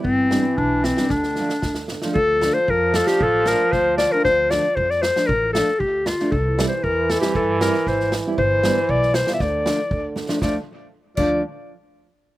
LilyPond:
<<
  \new Staff \with { instrumentName = "Clarinet" } { \time 4/4 \key d \minor \tempo 4 = 116 c'4 d'8 c'8 d'4. r8 | a'8. c''16 bes'8 a'16 g'16 a'8 bes'8 c''8 d''16 bes'16 | c''8 d''8 c''16 d''16 c''8 bes'8 a'8 g'8 f'8 | a'8. c''16 bes'8 a'16 g'16 a'8 bes'8 c''8 r8 |
c''4 d''8 c''16. e''32 d''4. r8 | d''16 r4 r16 d''8 r2 | }
  \new Staff \with { instrumentName = "Nylon-string guitar" } { \time 4/4 \key d \minor r8 <g b d'>16 r4 <g b d'>16 r8 <f a d'>16 r4 <f a d'>16 | r8 <f a d'>16 r4 <f a d'>16 r8 <f a d'>16 r4 <f a d'>16 | r8 <f a d'>16 r4 <f a d'>16 r8 <f a d'>16 r4 <f a d'>16 | r8 <g c' e'>16 r4 <g c' e'>16 r8 <g c' e'>16 r4 <g c' e'>16 |
r8 <g b d'>16 r4 <g b f'>16 r8 <f a d'>16 r4 <f a d'>16 | <f a d'>16 r4 r16 <f a d'>8 r2 | }
  \new Staff \with { instrumentName = "Trombone" } { \clef bass \time 4/4 \key d \minor e2 d4 d4 | f1~ | f2.~ f8 r8 | e1 |
e2 d8.~ d32 e32 d4 | f8 r4 f8 r2 | }
  \new Staff \with { instrumentName = "Upright bass" } { \clef bass \time 4/4 \key d \minor g,,4 b,,4 d,4 d,4 | d,4 f,4 a,,4 d,4 | d,4 f,4 a,,4 d,4 | c,4 e,4 g,4 gis,,4 |
g,,4 b,,4 d,4 d,4 | d,8 r4 d,8 r2 | }
  \new DrumStaff \with { instrumentName = "Drums" } \drummode { \time 4/4 bd8 sn8 bd8 sn16 sn16 <bd sn>16 sn16 sn16 sn16 <bd sn>16 sn16 sn16 sn16 | bd8 sn8 bd8 sn16 sn16 bd8 sn8 <bd sn>8 sn8 | <bd sn>8 sn8 bd16 sn16 sn16 sn16 bd8 sn8 bd8 sn16 sn16 | bd8 sn8 bd8 sn16 sn16 bd8 sn16 sn16 <bd sn>16 sn16 sn8 |
bd8 sn8 bd16 sn16 sn16 sn16 <bd sn>8 sn8 bd8 sn16 sn16 | <bd sn>4 r8 <cymc bd>8 r4 r4 | }
>>